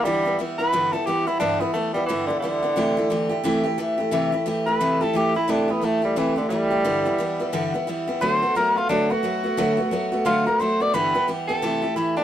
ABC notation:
X:1
M:4/4
L:1/8
Q:"Swing" 1/4=176
K:G
V:1 name="Tenor saxophone"
G,2 z B2 A G E | D B, A, G, E, D, D,2- | D,4 z4 | z3 B2 A G E |
D B, A, G, E, D, G,2- | G,4 z4 | c2 _B =F D ^F3- | F3 z =F _B c d |
B2 z A3 E D |]
V:2 name="Steel-string acoustic guitar"
[G,,D,E,G,B,E] [E,G,B,E] [E,G,B,E] [E,G,B,E] [G,,D,E,G,B,E] [E,G,B,E] [E,G,B,E] [E,G,B,E] | [G,,D,E,G,B,E] [E,G,B,E] [E,G,B,E] [E,G,B,E] [G,,D,E,G,B,E] [E,G,B,E] [E,G,B,E] [E,G,B,E] | [C,E,A,EG] [A,EG] [E,A,EG] [A,EG] [C,E,A,EG] [A,EG] [E,A,EG] [A,EG] | [C,E,A,EG] [A,EG] [E,A,EG] [A,EG] [C,E,A,EG] [A,EG] [E,A,EG] [A,EG] |
[C,E,A,EG] [A,EG] [E,A,EG] [A,EG] [C,E,A,EG] [A,EG] [E,A,EG] [A,EG] | [G,,D,E,G,B,E] [E,G,B,E] [E,G,B,E] [E,G,B,E] [G,,D,E,G,B,E] [E,G,B,E] [E,G,B,E] [E,G,B,E] | [D,F,A,B,F] [A,B,F] [F,A,B,F] [A,B,F] [D,F,A,B,F] [A,B,F] [F,A,B,F] [A,B,F] | [D,F,A,B,F] [A,B,F] [F,A,B,F] [A,B,F] [D,F,A,B,F] [A,B,F] [F,A,B,F] [A,B,F] |
[G,,D,E,G,B,G] [E,G,B,G] [E,G,B,G] [E,G,B,G] [C,E,A,EG] [A,EG] [E,A,EG] [A,EG] |]